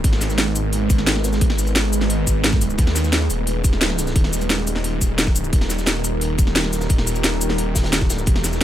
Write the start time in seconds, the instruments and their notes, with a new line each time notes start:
Already playing: ambient pad G#3 D#4 A#4 B4
0.04 detuned saw bass G#1, kick, closed hi-hat
0.13 snare
0.21 snare, closed hi-hat, cabasa
0.30 snare, cabasa
0.38 snare, closed hi-hat
0.56 closed hi-hat, cabasa
0.73 closed hi-hat
0.90 kick, closed hi-hat, cabasa
0.98 snare
1.07 snare, closed hi-hat, cabasa
1.16 snare
1.24 snare, closed hi-hat, cabasa
1.33 snare, cabasa
1.41 detuned saw bass G#1, ambient pad G#4, kick, closed hi-hat
1.50 snare
1.58 closed hi-hat, open hi-hat, cabasa
1.67 closed hi-hat, cabasa
1.75 snare, closed hi-hat
1.93 closed hi-hat, cabasa
2.01 snare
2.10 closed hi-hat
2.27 detuned saw bass G#1, kick, closed hi-hat, cabasa
2.44 snare, closed hi-hat, cabasa
2.52 kick, snare
2.61 closed hi-hat, cabasa
2.70 cabasa
2.78 detuned saw bass D#2, kick, closed hi-hat
2.87 snare
2.96 snare, closed hi-hat, cabasa
3.04 snare, cabasa
3.12 snare, closed hi-hat
3.30 detuned saw bass D#1, closed hi-hat, cabasa
3.47 closed hi-hat
3.64 kick, closed hi-hat, cabasa
3.72 snare
3.81 snare, closed hi-hat, cabasa
3.90 snare
3.98 snare, closed hi-hat, cabasa
4.07 snare, cabasa
4.16 detuned saw bass D#1, ambient pad G4 A#4, kick, closed hi-hat
4.24 snare
4.33 closed hi-hat, open hi-hat, cabasa
4.41 closed hi-hat, cabasa
4.50 snare, closed hi-hat
4.67 closed hi-hat, cabasa
4.76 snare
4.84 closed hi-hat
5.01 detuned saw bass D#1, kick, closed hi-hat, cabasa
5.18 snare, closed hi-hat, cabasa
5.27 kick, snare
5.35 closed hi-hat, cabasa
5.44 cabasa
5.53 detuned saw bass D#1, kick, closed hi-hat
5.61 snare
5.70 snare, closed hi-hat, cabasa
5.78 snare, cabasa
5.86 snare, closed hi-hat
6.04 closed hi-hat, cabasa
6.21 closed hi-hat
6.38 kick, closed hi-hat, cabasa
6.47 snare
6.56 snare, closed hi-hat, cabasa
6.64 snare
6.72 snare, closed hi-hat, cabasa
6.80 snare, cabasa
6.89 detuned saw bass D#1, kick, closed hi-hat
6.98 snare
7.07 closed hi-hat, open hi-hat, cabasa
7.15 closed hi-hat, cabasa
7.24 snare, closed hi-hat
7.41 closed hi-hat, cabasa
7.50 snare
7.58 closed hi-hat
7.75 detuned saw bass D#1, kick, snare, closed hi-hat, cabasa
7.84 snare, closed hi-hat
7.93 snare, closed hi-hat, cabasa
8.01 kick, snare
8.09 snare, closed hi-hat, cabasa
8.19 cabasa
8.26 detuned saw bass E1, kick, closed hi-hat
8.36 snare
8.44 snare, closed hi-hat, cabasa
8.53 snare, cabasa